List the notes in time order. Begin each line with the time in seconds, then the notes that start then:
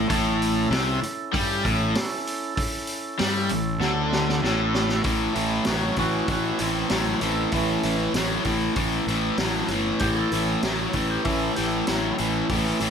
0.09 A1 A2 C#4 E4 A4, kick, open hi-hat
0.42 open hi-hat
0.71 C2 C3, snare, open hi-hat
1.02 muted overdriven electric guitar stroke, muted fingered electric bass stroke, open hi-hat
1.33 G2 G3, kick, open hi-hat
1.63 A1 A2, kick, open hi-hat
1.95 snare, open hi-hat
2.27 open hi-hat
2.56 C#4 E4 A4, kick, open hi-hat
2.87 open hi-hat
3.19 G2 G3, snare, open hi-hat
3.49 A1 A2, open hi-hat
3.80 D2 D3, snare
4.13 snare
4.29 snare
4.43 A1 A2, snare
4.75 snare
4.89 snare
5.04 A1 A2 E3, kick, open hi-hat
5.35 A1 A2 E3 A3 C#4, open hi-hat
5.63 A1 A2 F#3 C#4 F4 F#4, snare, open hi-hat
5.96 A1 A2 E3 C#4 F#4, kick, open hi-hat
6.28 A1 A2 E3 C#4, kick, open hi-hat
6.32 F#4
6.59 A1 A2 E3, open hi-hat
6.63 C4 E4
6.90 A1 A2 F#3 C4 E4, snare, open hi-hat
7.21 A1 A2 E3 C4 E4, open hi-hat
7.52 A1 A2 E3 A3, kick, open hi-hat
7.57 C#4
7.83 A1 A2 E3, open hi-hat
8.14 A1 A2 F#3, snare, open hi-hat
8.45 A1 A2 E3, kick, open hi-hat
8.76 A1 A2 E3, kick, open hi-hat
9.07 A1 A2 E3, open hi-hat
9.38 A1 A2 F#3, snare, open hi-hat
9.68 G1 A2 E3, open hi-hat
9.99 A1 A2 E3 G4, kick, open hi-hat
10.14 G#4 A4
10.32 A1 A2 E3 A3 C#4, open hi-hat
10.63 A1 A2 F#3, snare, open hi-hat
10.93 A1 A2 E3, kick, open hi-hat
11.11 G4
11.24 A1 A2 E3 A3 C#4 E4, kick, open hi-hat
11.56 A1 A2 E3 G4, open hi-hat
11.67 E4
11.87 A1 A2 F#3, snare, open hi-hat
12.13 D#4 E4
12.18 A1 A2 E3, open hi-hat
12.44 E3 A3 C#4
12.49 A1 A2 E3, kick, open hi-hat
12.80 A1 A2 E3, open hi-hat